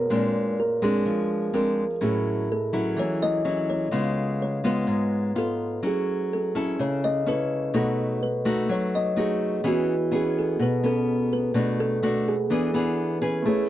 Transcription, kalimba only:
0, 0, Header, 1, 2, 480
1, 0, Start_track
1, 0, Key_signature, 4, "major"
1, 0, Tempo, 476569
1, 102, Time_signature, 4, 2, 24, 8
1, 13791, End_track
2, 0, Start_track
2, 0, Title_t, "Kalimba"
2, 0, Program_c, 0, 108
2, 0, Note_on_c, 0, 70, 78
2, 590, Note_off_c, 0, 70, 0
2, 602, Note_on_c, 0, 70, 69
2, 839, Note_off_c, 0, 70, 0
2, 844, Note_on_c, 0, 68, 65
2, 1281, Note_off_c, 0, 68, 0
2, 1564, Note_on_c, 0, 70, 68
2, 2048, Note_off_c, 0, 70, 0
2, 2049, Note_on_c, 0, 68, 64
2, 2531, Note_off_c, 0, 68, 0
2, 2536, Note_on_c, 0, 69, 72
2, 3015, Note_off_c, 0, 69, 0
2, 3016, Note_on_c, 0, 73, 83
2, 3248, Note_off_c, 0, 73, 0
2, 3248, Note_on_c, 0, 75, 101
2, 3724, Note_on_c, 0, 73, 74
2, 3731, Note_off_c, 0, 75, 0
2, 4442, Note_off_c, 0, 73, 0
2, 4455, Note_on_c, 0, 73, 68
2, 4688, Note_off_c, 0, 73, 0
2, 4698, Note_on_c, 0, 71, 65
2, 5130, Note_off_c, 0, 71, 0
2, 5422, Note_on_c, 0, 69, 73
2, 5853, Note_off_c, 0, 69, 0
2, 5912, Note_on_c, 0, 68, 71
2, 6379, Note_on_c, 0, 69, 73
2, 6384, Note_off_c, 0, 68, 0
2, 6856, Note_on_c, 0, 73, 84
2, 6857, Note_off_c, 0, 69, 0
2, 7088, Note_off_c, 0, 73, 0
2, 7092, Note_on_c, 0, 75, 89
2, 7327, Note_off_c, 0, 75, 0
2, 7337, Note_on_c, 0, 71, 82
2, 7769, Note_off_c, 0, 71, 0
2, 7810, Note_on_c, 0, 69, 74
2, 8246, Note_off_c, 0, 69, 0
2, 8287, Note_on_c, 0, 71, 74
2, 8771, Note_off_c, 0, 71, 0
2, 8777, Note_on_c, 0, 73, 85
2, 9008, Note_off_c, 0, 73, 0
2, 9015, Note_on_c, 0, 75, 84
2, 9248, Note_off_c, 0, 75, 0
2, 9259, Note_on_c, 0, 68, 69
2, 9736, Note_off_c, 0, 68, 0
2, 9748, Note_on_c, 0, 66, 73
2, 10220, Note_off_c, 0, 66, 0
2, 10226, Note_on_c, 0, 68, 67
2, 10453, Note_off_c, 0, 68, 0
2, 10461, Note_on_c, 0, 69, 70
2, 10690, Note_off_c, 0, 69, 0
2, 10700, Note_on_c, 0, 71, 79
2, 10929, Note_off_c, 0, 71, 0
2, 10936, Note_on_c, 0, 69, 85
2, 11367, Note_off_c, 0, 69, 0
2, 11409, Note_on_c, 0, 71, 74
2, 11887, Note_on_c, 0, 69, 76
2, 11890, Note_off_c, 0, 71, 0
2, 12369, Note_off_c, 0, 69, 0
2, 12371, Note_on_c, 0, 68, 64
2, 13275, Note_off_c, 0, 68, 0
2, 13566, Note_on_c, 0, 68, 65
2, 13791, Note_off_c, 0, 68, 0
2, 13791, End_track
0, 0, End_of_file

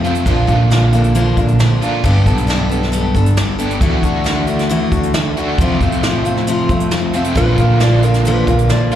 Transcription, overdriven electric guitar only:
0, 0, Header, 1, 2, 480
1, 0, Start_track
1, 0, Tempo, 443459
1, 294, Time_signature, 4, 2, 24, 8
1, 9692, End_track
2, 0, Start_track
2, 0, Title_t, "Overdriven electric guitar"
2, 0, Program_c, 0, 29
2, 44, Note_on_c, 0, 65, 83
2, 53, Note_on_c, 0, 57, 70
2, 53, Note_on_c, 0, 60, 76
2, 61, Note_on_c, 0, 53, 68
2, 63, Note_on_c, 0, 48, 71
2, 68, Note_on_c, 0, 41, 72
2, 275, Note_off_c, 0, 65, 0
2, 279, Note_off_c, 0, 57, 0
2, 279, Note_off_c, 0, 60, 0
2, 283, Note_off_c, 0, 53, 0
2, 284, Note_off_c, 0, 48, 0
2, 287, Note_off_c, 0, 41, 0
2, 288, Note_on_c, 0, 46, 82
2, 292, Note_on_c, 0, 50, 90
2, 296, Note_on_c, 0, 58, 91
2, 307, Note_on_c, 0, 62, 84
2, 308, Note_on_c, 0, 65, 97
2, 1950, Note_off_c, 0, 65, 0
2, 1955, Note_off_c, 0, 46, 0
2, 1957, Note_off_c, 0, 50, 0
2, 1959, Note_off_c, 0, 58, 0
2, 1962, Note_off_c, 0, 62, 0
2, 1962, Note_on_c, 0, 65, 84
2, 1967, Note_on_c, 0, 62, 77
2, 1980, Note_on_c, 0, 58, 68
2, 1981, Note_on_c, 0, 50, 71
2, 1986, Note_on_c, 0, 46, 63
2, 2193, Note_off_c, 0, 65, 0
2, 2196, Note_off_c, 0, 50, 0
2, 2201, Note_on_c, 0, 43, 83
2, 2202, Note_off_c, 0, 58, 0
2, 2205, Note_off_c, 0, 46, 0
2, 2209, Note_on_c, 0, 50, 79
2, 2211, Note_on_c, 0, 55, 94
2, 2218, Note_off_c, 0, 62, 0
2, 2219, Note_on_c, 0, 59, 94
2, 2222, Note_on_c, 0, 62, 93
2, 2227, Note_on_c, 0, 67, 90
2, 3870, Note_off_c, 0, 67, 0
2, 3872, Note_off_c, 0, 43, 0
2, 3876, Note_off_c, 0, 50, 0
2, 3877, Note_off_c, 0, 55, 0
2, 3879, Note_off_c, 0, 62, 0
2, 3881, Note_off_c, 0, 59, 0
2, 3883, Note_on_c, 0, 67, 79
2, 3892, Note_on_c, 0, 62, 72
2, 3897, Note_on_c, 0, 55, 71
2, 3898, Note_on_c, 0, 59, 72
2, 3906, Note_on_c, 0, 50, 68
2, 3911, Note_on_c, 0, 43, 59
2, 4103, Note_off_c, 0, 50, 0
2, 4111, Note_off_c, 0, 55, 0
2, 4113, Note_off_c, 0, 67, 0
2, 4116, Note_on_c, 0, 50, 86
2, 4117, Note_off_c, 0, 62, 0
2, 4121, Note_off_c, 0, 59, 0
2, 4127, Note_off_c, 0, 43, 0
2, 4127, Note_on_c, 0, 57, 88
2, 4138, Note_on_c, 0, 62, 89
2, 4143, Note_on_c, 0, 66, 90
2, 5790, Note_off_c, 0, 50, 0
2, 5796, Note_off_c, 0, 57, 0
2, 5797, Note_off_c, 0, 66, 0
2, 5801, Note_off_c, 0, 62, 0
2, 5810, Note_on_c, 0, 66, 77
2, 5818, Note_on_c, 0, 62, 72
2, 5820, Note_on_c, 0, 57, 66
2, 5832, Note_on_c, 0, 50, 68
2, 6037, Note_off_c, 0, 66, 0
2, 6041, Note_off_c, 0, 62, 0
2, 6042, Note_off_c, 0, 57, 0
2, 6042, Note_on_c, 0, 41, 84
2, 6047, Note_on_c, 0, 48, 83
2, 6048, Note_off_c, 0, 50, 0
2, 6054, Note_on_c, 0, 53, 86
2, 6062, Note_on_c, 0, 57, 89
2, 6066, Note_on_c, 0, 60, 93
2, 6067, Note_on_c, 0, 65, 88
2, 7714, Note_off_c, 0, 41, 0
2, 7714, Note_off_c, 0, 65, 0
2, 7717, Note_off_c, 0, 48, 0
2, 7717, Note_off_c, 0, 60, 0
2, 7720, Note_off_c, 0, 53, 0
2, 7724, Note_off_c, 0, 57, 0
2, 7727, Note_on_c, 0, 65, 74
2, 7730, Note_on_c, 0, 60, 82
2, 7741, Note_on_c, 0, 57, 77
2, 7744, Note_on_c, 0, 53, 76
2, 7747, Note_on_c, 0, 48, 68
2, 7750, Note_on_c, 0, 41, 60
2, 7956, Note_off_c, 0, 65, 0
2, 7958, Note_off_c, 0, 60, 0
2, 7963, Note_off_c, 0, 57, 0
2, 7965, Note_off_c, 0, 48, 0
2, 7965, Note_off_c, 0, 53, 0
2, 7968, Note_off_c, 0, 41, 0
2, 7969, Note_on_c, 0, 46, 86
2, 7978, Note_on_c, 0, 50, 91
2, 7983, Note_on_c, 0, 58, 96
2, 7986, Note_on_c, 0, 62, 87
2, 7994, Note_on_c, 0, 65, 92
2, 9637, Note_off_c, 0, 46, 0
2, 9642, Note_off_c, 0, 50, 0
2, 9642, Note_off_c, 0, 65, 0
2, 9645, Note_off_c, 0, 58, 0
2, 9655, Note_on_c, 0, 65, 75
2, 9657, Note_off_c, 0, 62, 0
2, 9692, Note_off_c, 0, 65, 0
2, 9692, End_track
0, 0, End_of_file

